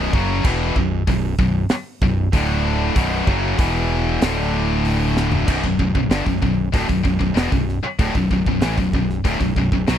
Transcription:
0.00 0.11 B0 medium
0.00 0.12 B1 loud
0.00 0.11 F#2 loud
0.00 0.13 B2 loud
0.12 0.42 F#1 loud
0.12 0.43 F#2 medium
0.12 0.44 C#3 medium
0.12 0.44 F#3 loud
0.12 kick loud
0.44 0.74 E1 medium
0.44 0.75 E2 medium
0.44 0.75 B2 loud
0.44 0.75 E3 loud
0.44 kick loud
0.44 crash loud
0.76 1.05 B0 medium
0.76 1.02 B1 medium
0.76 1.02 F#2 medium
0.76 kick medium
1.07 1.37 B0 medium
1.07 1.33 B1 medium
1.07 1.33 F#2 medium
1.07 kick medium
1.07 open hi-hat medium
1.38 1.68 B0 medium
1.38 1.64 B1 medium
1.38 1.65 F#2 medium
1.38 kick loud
1.69 muted fingered electric bass stroke soft
1.69 muted distorted electric guitar stroke medium
1.69 snare loud
1.69 open hi-hat medium
2.01 2.31 B0 medium
2.01 2.28 B1 medium
2.01 2.28 F#2 medium
2.01 kick loud
2.33 2.92 D1 medium
2.33 2.95 D2 medium
2.33 2.96 A2 loud
2.33 2.96 D3 loud
2.33 kick loud
2.33 open hi-hat medium
2.95 3.25 B0 medium
2.95 3.25 B1 medium
2.95 3.25 F#2 medium
2.95 3.27 B2 loud
2.95 kick loud
2.95 open hi-hat medium
3.26 3.57 F#1 loud
3.26 3.59 F#2 loud
3.26 3.60 C#3 loud
3.26 3.60 F#3 loud
3.26 kick loud
3.58 4.18 E1 loud
3.58 4.21 E2 medium
3.58 4.21 B2 loud
3.58 4.21 E3 loud
3.58 kick loud
3.58 open hi-hat medium
4.21 5.44 D1 loud
4.21 5.46 D2 loud
4.21 5.47 A2 loud
4.21 5.47 D3 loud
4.21 snare loud
4.21 open hi-hat medium
4.85 open hi-hat medium
5.17 snare medium
5.32 floor tom loud
5.47 5.63 B0 medium
5.47 5.62 B1 medium
5.47 5.63 F#2 loud
5.47 kick loud
5.47 crash loud
5.64 5.78 B0 medium
5.64 5.79 B1 medium
5.64 5.79 F#2 medium
5.64 kick medium
5.79 5.94 B0 medium
5.79 5.94 B1 medium
5.79 5.95 F#2 medium
5.79 kick medium
5.95 6.09 B0 medium
5.95 6.10 B1 medium
5.95 6.11 F#2 medium
5.95 kick medium
6.10 6.25 G1 loud
6.10 6.25 G2 medium
6.10 6.25 D3 loud
6.10 snare loud
6.10 open hi-hat medium
6.26 6.41 B0 medium
6.26 6.41 B1 medium
6.26 6.41 F#2 medium
6.26 kick medium
6.42 6.71 B0 medium
6.42 6.67 B1 medium
6.42 6.68 F#2 medium
6.42 kick medium
6.73 6.88 D1 loud
6.73 6.88 D2 loud
6.73 6.88 A2 loud
6.73 kick loud
6.73 open hi-hat medium
6.88 7.04 B0 medium
6.88 7.02 B1 medium
6.88 7.03 F#2 medium
6.88 kick medium
7.03 7.20 B0 medium
7.03 7.18 B1 medium
7.03 7.18 F#2 medium
7.03 kick medium
7.19 7.36 B0 medium
7.19 7.34 B1 medium
7.19 7.35 F#2 medium
7.19 kick medium
7.34 7.51 E1 loud
7.34 7.50 E2 loud
7.34 7.51 B2 loud
7.34 snare loud
7.34 open hi-hat medium
7.51 7.81 B0 medium
7.51 7.77 B1 medium
7.51 7.77 F#2 medium
7.51 kick medium
7.69 snare soft
7.83 muted fingered electric bass stroke soft
7.83 muted distorted electric guitar stroke medium
7.99 8.14 D1 medium
7.99 8.14 D2 medium
7.99 8.15 A2 medium
7.99 kick loud
7.99 open hi-hat medium
8.15 8.30 B0 medium
8.15 8.30 B1 medium
8.15 8.30 F#2 medium
8.15 kick medium
8.31 8.46 B0 medium
8.31 8.46 B1 medium
8.31 8.46 F#2 medium
8.31 kick medium
8.46 8.61 B0 medium
8.46 8.62 B1 medium
8.46 8.63 F#2 medium
8.46 kick medium
8.61 8.77 A1 loud
8.61 8.77 A2 medium
8.61 8.78 E3 loud
8.61 snare loud
8.61 open hi-hat medium
8.78 8.92 B0 medium
8.78 8.93 B1 medium
8.78 8.94 F#2 medium
8.78 kick medium
8.93 9.23 B0 medium
8.93 9.19 B1 medium
8.93 9.20 F#2 medium
8.93 kick medium
9.10 snare soft
9.24 9.39 D1 loud
9.24 9.40 D2 loud
9.24 9.39 A2 loud
9.24 kick loud
9.24 open hi-hat medium
9.40 9.55 B0 medium
9.40 9.56 B1 medium
9.40 9.56 F#2 medium
9.40 kick medium
9.56 9.71 B0 medium
9.56 9.72 B1 medium
9.56 9.72 F#2 medium
9.56 kick medium
9.72 9.87 B0 medium
9.72 9.89 B1 medium
9.72 9.87 F#2 medium
9.72 kick medium
9.87 9.98 B1 medium
9.87 9.98 B2 loud
9.87 9.98 F#3 loud
9.87 snare loud
9.87 open hi-hat medium

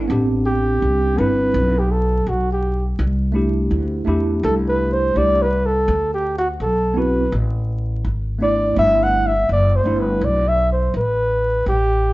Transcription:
0.00 0.10 A4 loud
0.08 0.78 A1 loud
0.08 1.12 B3 medium
0.08 1.13 C4 medium
0.08 1.13 D4 medium
0.08 1.14 G4 medium
0.46 1.20 G4 loud
0.82 1.16 C2 medium
1.16 1.52 G1 medium
1.16 1.72 B3 medium
1.16 1.73 C4 medium
1.16 1.73 D4 medium
1.16 1.80 B4 loud
1.20 1.74 E4 medium
1.54 2.23 B1 loud
1.79 1.93 G4 medium
1.92 2.30 A4 medium
2.27 2.95 B1 medium
2.27 2.51 F#4 medium
2.53 2.85 G4 medium
2.99 3.67 C2 loud
3.32 4.04 A3 medium
3.32 4.05 D4 medium
3.32 4.06 E4 medium
3.32 4.08 G4 medium
3.71 4.05 D2 loud
4.05 4.41 E2 medium
4.05 5.09 A3 medium
4.05 5.10 D4 medium
4.05 5.11 E4 medium
4.05 5.11 G4 medium
4.43 5.12 C2 loud
4.43 4.55 A4 medium
4.69 4.94 B4 loud
4.93 5.19 C5 medium
5.14 5.84 C2 medium
5.14 5.43 A3 medium
5.14 5.44 D4 medium
5.14 5.44 E4 medium
5.14 5.45 G4 medium
5.14 5.44 D5 loud
5.42 5.67 B4 medium
5.66 6.13 A4 loud
5.88 6.56 D2 loud
6.14 6.35 G4 medium
6.39 6.49 F#4 medium
6.60 7.29 B1 medium
6.60 7.00 A4 medium
6.94 7.24 B3 medium
6.94 7.24 C4 medium
6.94 7.25 E4 medium
6.94 7.25 F#4 medium
6.98 7.33 B4 medium
7.32 8.01 A1 loud
8.04 8.73 G#1 medium
8.39 8.73 A3 medium
8.39 8.75 B3 medium
8.39 8.76 D4 medium
8.43 8.77 E4 medium
8.43 8.75 D5 loud
8.75 9.45 G1 loud
8.75 9.31 A3 medium
8.75 9.31 B3 medium
8.75 9.32 D4 medium
8.75 9.33 E4 medium
8.79 9.05 E5 loud
9.03 9.29 F#5 loud
9.27 9.50 E5 loud
9.49 9.83 F#1 medium
9.49 9.77 D5 loud
9.76 10.02 C5 medium
9.83 10.20 G1 medium
9.83 10.39 A3 medium
9.83 10.40 B3 medium
9.83 10.40 D4 medium
9.83 10.41 E4 medium
10.00 10.26 B4 medium
10.21 10.90 B1 loud
10.21 10.50 D5 loud
10.48 10.71 E5 loud
10.72 10.93 C5 medium
10.94 11.62 A1 medium
10.94 11.63 B4 medium
11.66 12.13 A1 medium
11.66 12.13 G4 loud

